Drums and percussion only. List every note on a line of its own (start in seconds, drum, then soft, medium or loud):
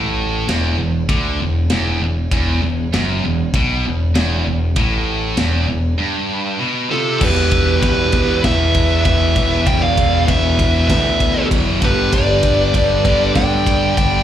0.49 snare loud
0.49 ride bell medium
1.09 kick loud
1.09 ride bell medium
1.70 snare loud
1.70 ride bell medium
2.31 kick loud
2.31 ride bell medium
2.94 snare loud
2.94 ride bell medium
3.54 kick loud
3.54 ride bell medium
4.15 snare loud
4.15 ride bell medium
4.76 kick loud
4.76 ride bell medium
5.37 snare loud
5.37 ride bell medium
7.21 kick loud
7.21 crash loud
7.51 kick medium
7.51 ride medium
7.83 kick medium
7.83 ride loud
8.12 kick medium
8.12 ride medium
8.44 kick loud
8.44 snare loud
8.44 ride loud
8.75 kick medium
8.75 ride medium
9.05 kick medium
9.05 ride medium
9.36 kick medium
9.36 ride medium
9.66 kick medium
9.66 ride loud
9.97 kick medium
9.97 ride medium
10.28 kick medium
10.28 ride loud
10.59 kick medium
10.59 ride medium
10.90 kick loud
10.90 snare loud
10.90 ride loud
11.20 kick medium
11.20 ride medium
11.51 kick medium
11.51 ride loud
11.82 kick medium
11.82 ride medium
12.13 kick medium
12.13 ride loud
12.43 kick medium
12.43 ride medium
12.74 kick medium
12.74 ride loud
13.05 kick medium
13.05 ride medium
13.35 kick medium
13.35 snare loud
13.35 ride loud
13.67 kick medium
13.67 ride medium
13.97 kick medium
13.97 ride loud